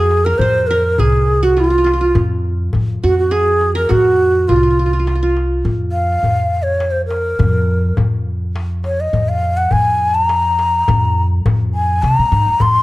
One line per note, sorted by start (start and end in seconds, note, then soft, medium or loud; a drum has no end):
0.00 0.36 F2 medium
0.00 0.96 F#4 medium
0.00 0.26 G#4 medium
0.00 0.99 G#4 medium
0.11 darbuka tek soft
0.25 0.40 A#4 medium
0.25 0.70 A#4 medium
0.38 0.94 F2 medium
0.38 0.69 C5 medium
0.38 1.47 C5 medium
0.38 darbuka dum medium
0.67 1.01 A#4 medium
0.67 1.84 A#4 medium
0.67 darbuka ka soft
0.98 2.12 C2 medium
0.98 1.46 G#4 medium
0.98 2.21 G#4 medium
0.98 darbuka dum medium
1.43 1.63 F#4 medium
1.43 1.61 F#4 medium
1.57 1.63 F4 medium
1.57 2.17 F4 medium
1.57 darbuka tek medium
1.64 1.70 F4 soft
1.70 1.78 F4 medium
1.78 1.84 F4 soft
1.84 1.93 F4 medium
1.84 darbuka tek medium
1.94 2.00 F4 soft
2.01 3.10 F4 medium
2.15 2.70 F2 loud
2.15 darbuka dum medium
2.44 darbuka ka soft
2.73 3.01 F2 medium
2.73 darbuka dum medium
3.04 3.87 F2 medium
3.04 3.89 F#4 medium
3.04 3.18 F#4 medium
3.19 3.33 F#4 medium
3.31 4.52 G#4 medium
3.31 3.75 G#4 loud
3.31 darbuka tek medium
3.61 darbuka tek soft
3.75 4.88 A#4 medium
3.75 3.92 A#4 medium
3.89 4.45 F2 medium
3.89 4.55 F#4 medium
3.89 4.50 F#4 loud
3.89 darbuka dum medium
4.48 5.61 C2 medium
4.48 5.36 F4 medium
4.48 4.56 F4 medium
4.48 darbuka dum medium
4.56 4.63 F4 soft
4.63 4.70 F4 soft
4.71 4.79 F4 soft
4.79 4.86 F4 soft
4.86 4.93 F4 soft
4.93 4.99 F4 soft
4.99 5.07 F4 soft
5.07 5.15 F4 soft
5.07 darbuka tek medium
5.15 5.22 F4 soft
5.23 6.57 F4 medium
5.37 darbuka tek soft
5.65 6.19 F2 medium
5.65 darbuka dum medium
5.92 6.64 F5 loud
5.92 darbuka ka soft
6.23 7.35 F2 medium
6.23 darbuka dum medium
6.63 6.93 C#5 medium
6.80 darbuka tek medium
6.91 7.06 C5 medium
7.06 7.98 A#4 medium
7.11 darbuka tek medium
7.39 7.94 F2 loud
7.39 darbuka dum medium
7.69 darbuka ka soft
7.97 9.10 F2 medium
7.97 darbuka dum medium
8.56 darbuka tek medium
8.84 9.02 C#5 medium
8.84 darbuka tek soft
9.00 9.30 D#5 medium
9.13 9.67 F2 medium
9.13 darbuka dum medium
9.29 9.59 F5 medium
9.43 darbuka ka soft
9.57 9.73 F#5 loud
9.71 10.84 F2 medium
9.71 10.16 G#5 loud
9.71 darbuka dum medium
10.15 11.23 A#5 medium
10.29 darbuka tek medium
10.59 darbuka tek medium
10.88 11.42 F2 loud
10.88 darbuka dum loud
11.18 darbuka ka soft
11.46 12.00 F2 medium
11.46 darbuka dum loud
11.74 12.04 G#5 medium
12.03 12.16 C3 medium
12.03 12.63 A#5 loud
12.03 darbuka tek medium
12.19 12.31 A#2 medium
12.32 12.45 G#2 medium
12.32 darbuka tek medium
12.46 12.60 F2 medium
12.60 12.83 F2 medium
12.60 12.83 C6 loud
12.60 darbuka dum medium